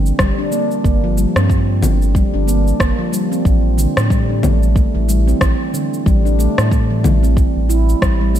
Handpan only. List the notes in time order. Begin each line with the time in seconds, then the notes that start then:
Already playing: D3
0.19 G3
0.38 D4
0.52 A#3
0.85 A#3
1.04 F3
1.17 G3
1.37 C4
1.82 D3
2.15 G3
2.34 D4
2.47 A#3
2.80 A#3
2.99 F3
3.12 G3
3.31 C4
3.78 D3
4.10 G3
4.29 D4
4.43 A3
4.76 A3
4.95 E3
5.08 G3
5.27 C4
5.74 D3
6.06 G3
6.25 D4
6.39 A3
6.71 A3
6.90 E3
7.04 G3
7.23 C4
7.69 E4
8.02 G3
8.21 G3
8.35 A3